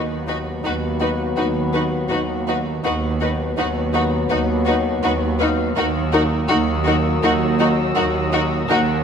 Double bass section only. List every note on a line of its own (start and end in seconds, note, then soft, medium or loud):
0.00 0.56 D#2 soft
0.65 1.30 D#2 soft
1.38 2.03 D#2 medium
2.12 2.76 D#2 soft
2.85 3.49 D#2 medium
3.58 4.22 D#2 medium
4.32 4.96 D#2 medium
5.05 5.69 D#2 medium
5.78 6.42 D#2 medium
6.51 7.15 D#2 medium
7.24 7.88 D#2 medium
7.97 8.61 D#2 medium
8.70 9.04 D#2 medium